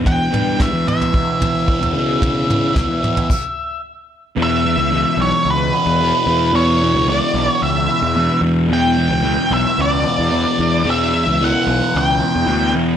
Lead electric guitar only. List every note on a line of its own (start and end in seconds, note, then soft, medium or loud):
0.07 0.61 G5 loud
0.62 0.87 E5 medium
0.89 3.81 E5 medium
4.43 5.21 E5 loud
5.22 5.48 C#5 medium
5.50 6.60 B4 medium
6.56 7.09 C#5 medium
7.10 7.50 D5 medium
7.50 7.63 C#5 medium
7.63 8.40 E5 medium
8.73 9.56 G5 loud
9.54 9.81 E5 loud
9.82 10.90 D5 medium
10.90 11.44 E5 medium
11.44 11.97 F#5 medium
11.98 12.73 G5 medium